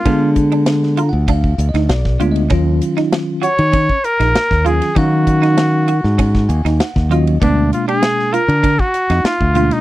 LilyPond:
<<
  \new Staff \with { instrumentName = "Trumpet" } { \time 4/4 \key ees \minor \tempo 4 = 98 f'8 r2. r8 | r4. des''4 bes'4 aes'8 | ges'2. r4 | d'8 f'16 aes'8. bes'8. ges'8. f'8. ees'16 | }
  \new Staff \with { instrumentName = "Clean electric guitar" } { \time 4/4 \key ees \minor ces'8 r16 d'8 r16 f'8 d'8 r16 ees'8 r16 f'8 | des'8 r16 ees'8 r16 ges'8 des'8 r16 ees'8 r16 f'8 | des'8 r16 ees'8 r16 ges'8 des'8 r16 ees'8 r16 f'8 | ces'8 r16 d'8 r16 f'8 d'8 r16 ees'8 r16 f'8 | }
  \new Staff \with { instrumentName = "Tine electric piano" } { \time 4/4 \key ees \minor r4 \tuplet 3/2 { r8. bes''16 ges''8 f''4 ees''8 d''4 ees''8 } | r1 | r2 r8 aes''8 ges''8 ees''8 | r1 | }
  \new Staff \with { instrumentName = "Tine electric piano" } { \time 4/4 \key ees \minor <aes ces' d' aes'>4. r2 <aes ces' d' f'>8 | <ees ges des' f'>4. r2 <ees ges des' f'>8 | <ees ges des' f''>4. r2 <ees ges des' ges'>8 | <ces aes bes d'>4. r2 <ces aes bes d'>8 | }
  \new Staff \with { instrumentName = "Fingered electric bass" } { \clef bass \time 4/4 \key ees \minor d4.~ d16 d,8. d,16 d,16 ces,8 d,8 | ees,8 r4 r16 ees8 r8 bes,,16 r16 ees,8 r16 | ees4.~ ees16 aes,8. ees,16 ees,16 r16 ees,8. | d,8 r4 r16 d8 r8 f,16 r16 d,8 r16 | }
  \new DrumStaff \with { instrumentName = "Drums" } \drummode { \time 4/4 <bd cymr>8 <hhp bd cymr>16 cymr16 <cymr sn>16 sn16 <hhp cymr>8 <bd cymr>16 bd16 <hhp cymr>16 <cymr sn>16 <cymr sn>16 <bd sn>16 <hhp cymr>16 cymr16 | <bd cymr>8 <hhp cymr>16 <cymr sn>16 <cymr sn>8 <hhp cymr>16 cymr16 <bd cymr>16 bd16 <hhp cymr>16 <cymr sn>16 <cymr sn>16 <bd sn>16 <hhp cymr>16 <cymr sn>16 | <bd cymr>8 <hhp bd cymr>16 <cymr sn>16 <cymr sn>8 <hhp cymr>16 sn16 <bd cymr>16 <bd sn>16 <hhp cymr>16 <cymr sn>16 <cymr sn>16 <bd sn>16 <hhp cymr>16 cymr16 | <bd cymr>8 <hhp cymr>16 cymr16 <cymr sn>16 sn16 <hhp cymr>16 cymr16 <bd cymr>16 bd16 <hhp cymr>16 <cymr sn>16 <cymr sn>16 bd16 <hhp cymr>16 <cymr sn>16 | }
>>